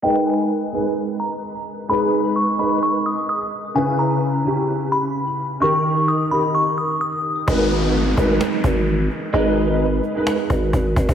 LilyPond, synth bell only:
\new Staff \with { instrumentName = "Synth bell" } { \time 4/4 \key gis \minor \tempo 4 = 129 g''8 gis''2 ais''4. | b''4 cis'''8 b''8 cis'''8 dis'''8 dis'''4 | gis''8 ais''2 b''4. | cis'''4 dis'''8 b''8 cis'''8 dis'''8 dis'''4 |
r1 | r1 | }